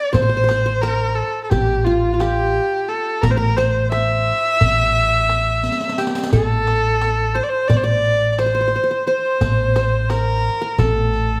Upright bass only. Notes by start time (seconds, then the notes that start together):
0.15 A1
1.52 A1
3.24 A1
4.61 A1
6.33 A1
7.70 A1
9.42 A1
10.80 A1